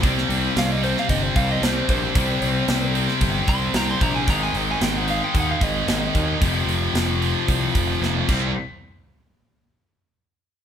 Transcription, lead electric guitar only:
X:1
M:4/4
L:1/16
Q:1/4=113
K:Cm
V:1 name="Lead electric guitar"
z4 f e c f e c f e c2 c2- | c6 z4 c'2 b c' b a | b a g a g ^f =f g ^f =f e6- | e2 z12 z2 |
z16 |]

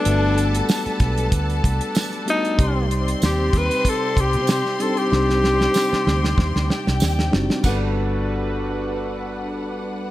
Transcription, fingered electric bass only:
X:1
M:4/4
L:1/16
Q:"Swing 16ths" 1/4=95
K:G
V:1 name="Fingered electric bass" clef=bass
G,,,4 z2 B,,,2 D,,2 C,, z4 z | C,,4 _E,,2 E,, z3 C,, C,2 z3 | C,,4 z2 D,,2 _E,, D,, z C,, E,,2 F,,, z | G,,,16 |]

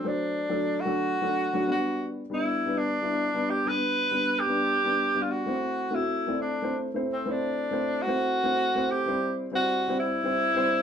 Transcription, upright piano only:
X:1
M:4/4
L:1/16
Q:"Swing" 1/4=133
K:G
V:1 name="Upright piano"
[F,A,Dc]3 z [F,A,DA]2 z [F,A,DA]2 z [F,A,DA]2 z [F,A,DF] [G,B,DB]2- | [G,B,DB]3 z [G,B,DB]2 z [G,B,DB]2 z [G,B,DE]2 z [G,B,DB]2 z | [G,B,DB]3 z [G,B,DB]2 z [G,B,DB]2 z [G,B,DB]2 z [G,B,Dd]2 z | [A,CEc]3 z [A,CEF]2 z [A,CEd]2 z [A,CEc]2 z [A,CEc]2 z |
[A,CEc]3 z [A,CEc]2 z [A,CEc]2 z [A,CEc]2 z [A,CEc]2 z | [G,CEc]3 z [G,CEc]2 z [G,CEc]2 z [G,CEc]2 z [G,CEc]2 z |]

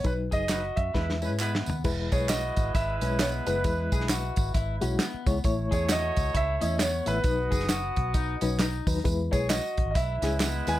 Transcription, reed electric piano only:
X:1
M:4/4
L:1/8
Q:"Swing" 1/4=133
K:E
V:1 name="Reed electric piano"
[F,DB]2 z2 [G,EB] [G,EB]2 z | [G,EB]2 z3 [G,EB] z [G,EB] | [G,EB]2 z3 [G,EF] z [G,Ec] | [A,Ec]2 z3 [A,Ed] z [A,Ee] |
[F,DB]2 z3 [F,DB] z [F,DB] | [G,EB]2 z3 [G,EG] z [G,EB] |]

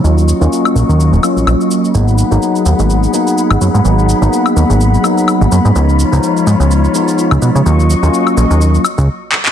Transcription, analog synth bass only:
X:1
M:4/4
L:1/16
Q:"Swing 16ths" 1/4=126
K:G#dor
V:1 name="Analog synth bass" clef=bass
D,,2 z D,, z2 A,,, D,,2 D,,, z A,,, A,,, z3 | G,,,2 z G,,, z2 D,, G,,,2 z4 G,,, F,, G,, | G,,,2 z G,,, z2 D,, G,,,2 z4 G,,, F,, G,, | C,,2 z C,, z2 G,, C,,2 z4 C,, B,, C, |
D,,2 z D,, z2 A,,, D,,2 z2 C,, z4 |]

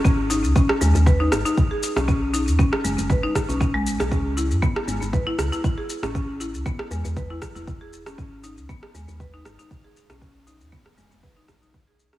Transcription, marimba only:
X:1
M:4/4
L:1/16
Q:"Swing 16ths" 1/4=118
K:G#phr
V:1 name="Marimba"
C z D z C z G, z B D z D z G z C | C z D z C z G, z B D z C C G, z G | C z E z B, z G, z B E z E z G z C | C z E z B, z G, z B E z E z G z C |
C z D z B, z G, z B D z D z G z C | C z D z B, z G, z B D z D z G z C |]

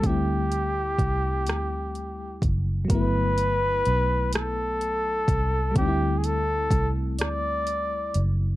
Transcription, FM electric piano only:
X:1
M:6/8
L:1/8
Q:3/8=42
K:G
V:1 name="FM electric piano"
[G,A,CE]6 | [F,A,B,E]6 | [G,A,C_E=E]6 |]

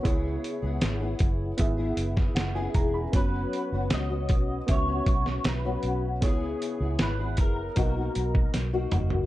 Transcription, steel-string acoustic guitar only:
X:1
M:4/4
L:1/16
Q:1/4=78
K:C#dor
V:1 name="Steel-string acoustic guitar"
[C,B,EG]3 [B,EG]2 [B,EG]4 [B,EG]4 [C,B,EG]3 | [F,B,CF]3 [B,CF]2 [B,CF]4 [B,CF]4 [F,B,CF]3 | [C,B,EG]3 [B,EG]2 [B,EG]3 [B,,A,DF] [A,DF]4 [B,,A,DF]3 |]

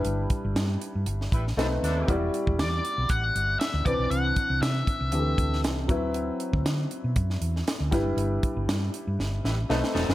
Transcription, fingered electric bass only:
X:1
M:4/4
L:1/16
Q:"Swing 16ths" 1/4=118
K:G
V:1 name="Fingered electric bass" clef=bass
G,,,2 z G,,, G,,2 z G,, G,,,2 A,,,2 B,,,2 ^D,,2 | E,,,2 z E,,, E,,2 z B,,, A,,,2 G,,,2 z D,, C,, B,,, | C,,2 z C,, C,2 z C,, D,,2 D,,2 C,,2 D,,2- | D,,2 z D,, D,2 z B,, F,,2 E,,2 z D,, G,,, F,,, |
G,,,2 z G,,, G,,2 z G,, G,,,2 A,,,2 B,,, z E,,, F,,, |]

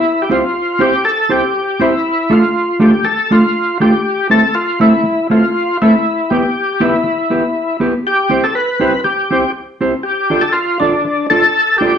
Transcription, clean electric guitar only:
X:1
M:4/4
L:1/16
Q:"Swing" 1/4=120
K:C
V:1 name="Clean electric guitar"
z2 [CEGc] z3 [CEGc] z3 [CEGc] z3 [CEGc] z | z2 [A,DFA] z3 [A,DFA] z3 [A,DFA] z3 [A,DFA] z | z2 [A,CEA] z3 [A,CEA] z3 [A,CEA] z3 [A,CEA] z | z2 [B,EGB] z3 [B,EGB] z3 [B,EGB] z3 [B,EGB] z |
z2 [CEGc] z3 [CEGc] z3 [CEGc] z3 [CEGc] z | z2 [DFAd] z3 [DFAd] z3 [DFAd] z3 [DFAd] z |]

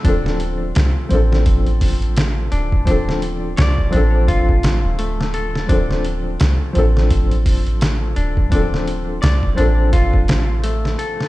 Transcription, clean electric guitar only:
X:1
M:4/4
L:1/8
Q:"Swing 16ths" 1/4=85
K:Dm
V:1 name="Clean electric guitar"
D z6 D | D z d D F2 A, A | D z6 D | D z d D F2 A, A |]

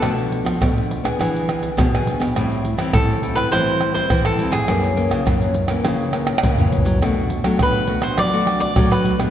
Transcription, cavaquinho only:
X:1
M:4/4
L:1/16
Q:1/4=103
K:Bphr
V:1 name="Cavaquinho"
A6- A z8 z | z4 A3 B c3 c2 A2 ^G- | ^G6- G z8 z | z4 B3 c d3 d2 B2 z |]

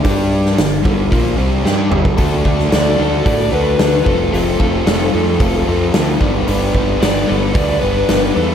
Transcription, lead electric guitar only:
X:1
M:4/4
L:1/8
Q:1/4=112
K:Glyd
V:1 name="Lead electric guitar"
z8 | z2 d A d B2 A | A6 z2 | z2 d A d B2 A |]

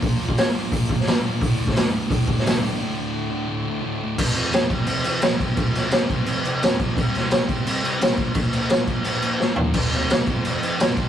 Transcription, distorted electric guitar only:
X:1
M:4/4
L:1/8
Q:1/4=173
K:F
V:1 name="Distorted electric guitar" clef=bass
[B,,F,B,] [F,B,]2 [F,B,] [B,,F,B,] [F,B,] [B,,F,B,] [F,B,] | [D,,A,,D,] [A,,D,]2 [A,,D,] [D,,A,,D,] [A,,D,] [D,,A,,D,] [A,,D,] | [D,,A,,D,] [A,,D,]2 [A,,D,] [D,,A,,D,] [A,,D,] [D,,A,,D,] [A,,D,] | [F,,C,F,] [F,,C,F,] [F,,C,F,] [F,,C,F,] [F,,C,F,] [F,,C,F,] [F,,C,F,] [F,,C,F,] |
[F,,C,F,] [F,,C,F,] [F,,C,F,] [F,,C,F,] [F,,C,F,] [F,,C,F,] [F,,C,F,] [F,,C,F,] | [C,G,C] [C,G,C] [C,G,C] [C,G,C] [C,G,C] [C,G,C] [C,G,C] [B,,F,B,] | [B,,F,B,] [B,,F,B,] [B,,F,B,] [B,,F,B,] [B,,F,B,] [B,,F,B,] [B,,F,B,] [B,,F,B,] | [F,,C,F,] [F,,C,F,] [F,,C,F,] [F,,C,F,] [F,,C,F,] [F,,C,F,] [F,,C,F,] [F,,C,F,] |]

